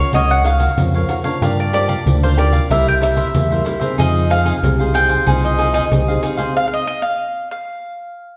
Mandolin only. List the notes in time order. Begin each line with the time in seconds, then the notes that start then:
Already playing: C#5
0.15 D#5
0.31 F#5
0.46 F5
1.42 F5
1.60 D5
1.74 D5
2.24 C5
2.38 D5
2.71 E5
2.88 G5
3.03 E5
4.00 D#5
4.31 F5
4.95 G5
5.45 D#5
5.74 D#5
6.57 F5
6.68 F5
6.73 D#5
6.87 D#5
7.02 F5
7.51 F5